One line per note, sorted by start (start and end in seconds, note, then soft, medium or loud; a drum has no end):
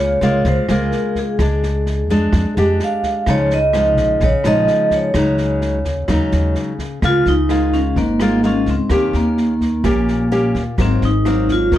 0.00 0.17 C#2 medium
0.00 0.43 C#3 medium
0.00 0.18 G#3 medium
0.00 0.19 A#3 medium
0.00 0.19 F4 medium
0.00 0.43 C#5 medium
0.21 0.43 C#2 medium
0.21 0.65 G#3 medium
0.21 0.65 A#3 medium
0.21 0.65 F4 medium
0.21 kick soft
0.21 snare soft
0.45 0.56 C#2 medium
0.45 1.37 C#3 medium
0.45 0.71 C5 medium
0.45 kick soft
0.45 snare soft
0.69 0.91 C#2 medium
0.69 1.36 G#3 medium
0.69 1.36 A#3 medium
0.69 1.37 F4 medium
0.69 1.18 A#4 medium
0.69 cross-stick medium
0.69 snare soft
0.92 snare soft
1.15 2.54 G#4 medium
1.15 kick soft
1.15 snare soft
1.39 2.09 C#2 medium
1.39 2.06 G#3 medium
1.39 2.06 D4 medium
1.39 kick medium
1.39 cross-stick medium
1.39 snare soft
1.63 snare soft
1.86 snare soft
2.09 2.31 F2 medium
2.09 2.53 G#3 medium
2.09 2.53 D4 medium
2.09 kick soft
2.09 snare soft
2.33 2.44 F2 medium
2.33 kick medium
2.33 cross-stick medium
2.33 snare soft
2.56 2.79 F2 medium
2.56 3.24 G#3 medium
2.56 3.24 D4 medium
2.56 3.24 G4 medium
2.56 snare soft
2.80 snare soft
2.84 3.30 F5 loud
3.03 kick soft
3.03 snare soft
3.26 3.97 C#2 medium
3.26 4.19 C#3 medium
3.26 3.58 F3 medium
3.26 3.58 G#3 medium
3.26 3.58 D#4 medium
3.26 3.50 C#5 medium
3.26 kick medium
3.26 cross-stick medium
3.26 snare soft
3.50 4.25 D#5 medium
3.50 snare soft
3.73 4.21 F3 medium
3.73 4.21 G#3 medium
3.73 4.21 D#4 medium
3.73 cross-stick medium
3.73 snare soft
3.97 4.19 A#1 medium
3.97 kick soft
3.97 snare soft
4.20 4.32 A#1 medium
4.20 5.13 C#3 medium
4.20 4.47 C#5 medium
4.20 kick medium
4.20 snare soft
4.44 4.67 A#1 medium
4.44 5.12 F3 medium
4.44 5.12 G#3 medium
4.44 5.12 D#4 medium
4.44 4.94 D#5 loud
4.44 cross-stick medium
4.44 snare soft
4.67 snare soft
4.91 6.53 C#5 medium
4.91 kick soft
4.91 snare soft
5.14 5.85 C#2 medium
5.14 6.06 C#3 medium
5.14 5.78 F#3 medium
5.14 5.78 G#3 medium
5.14 5.78 D#4 medium
5.14 kick medium
5.14 cross-stick medium
5.14 snare soft
5.38 snare soft
5.61 snare soft
5.85 6.07 D#2 medium
5.85 kick soft
5.85 snare soft
6.08 6.19 D#2 loud
6.08 7.00 C#3 medium
6.08 6.72 F#3 medium
6.08 6.72 G#3 medium
6.08 6.72 D#4 medium
6.08 kick medium
6.08 cross-stick medium
6.08 snare soft
6.32 6.54 D#2 medium
6.32 snare soft
6.55 snare soft
6.79 kick soft
6.79 snare soft
7.02 7.24 C#2 medium
7.02 7.95 C#3 medium
7.02 7.33 G#3 soft
7.02 7.33 A#3 soft
7.02 7.34 F4 medium
7.02 7.28 F4 loud
7.02 kick medium
7.02 cross-stick soft
7.02 snare soft
7.25 7.92 C#2 medium
7.25 7.76 D#4 medium
7.25 snare soft
7.49 7.96 G#3 soft
7.49 7.96 A#3 soft
7.49 7.97 F4 soft
7.49 cross-stick medium
7.49 snare soft
7.73 7.98 C#4 medium
7.73 kick soft
7.73 snare soft
7.96 8.63 G#1 medium
7.96 8.88 G#2 medium
7.96 8.19 A#3 medium
7.96 kick medium
7.96 snare soft
8.20 8.40 G#3 medium
8.20 8.40 A#3 medium
8.20 8.45 A#3 medium
8.20 8.40 F4 medium
8.20 cross-stick medium
8.20 snare soft
8.43 8.74 G#3 soft
8.43 8.74 A#3 soft
8.43 8.69 C#4 medium
8.43 8.74 F4 medium
8.43 snare soft
8.66 8.78 C#2 medium
8.66 kick soft
8.66 snare soft
8.71 9.17 C4 medium
8.90 9.12 D#2 medium
8.90 9.82 D#3 medium
8.90 9.53 A#3 soft
8.90 9.54 C#4 soft
8.90 9.54 G4 medium
8.90 kick medium
8.90 cross-stick medium
8.90 snare soft
9.13 9.80 D#2 medium
9.13 10.52 A#3 medium
9.13 snare soft
9.37 snare soft
9.60 kick soft
9.60 snare soft
9.84 10.50 A#1 medium
9.84 10.76 A#2 medium
9.84 10.27 A#3 medium
9.84 10.28 C#4 medium
9.84 10.28 G4 medium
9.84 kick medium
9.84 cross-stick medium
9.84 snare soft
10.08 snare soft
10.31 10.62 A#3 medium
10.31 10.62 C#4 medium
10.31 10.62 G4 medium
10.31 snare soft
10.55 10.66 D#2 medium
10.55 kick soft
10.55 snare soft
10.78 11.00 G#1 medium
10.78 11.69 G#2 soft
10.78 11.08 F#3 medium
10.78 11.09 A#3 medium
10.78 11.09 C4 medium
10.78 11.04 C4 loud
10.78 kick medium
10.78 cross-stick medium
10.78 snare soft
11.02 11.68 G#1 medium
11.02 11.52 D#4 medium
11.02 snare soft
11.25 11.78 F#3 medium
11.25 11.78 A#3 medium
11.25 11.78 C4 medium
11.25 cross-stick soft
11.25 snare soft
11.48 11.74 F4 medium
11.48 kick soft
11.48 snare soft
11.72 11.78 D#2 medium
11.72 11.78 D#3 soft
11.72 kick medium
11.72 snare soft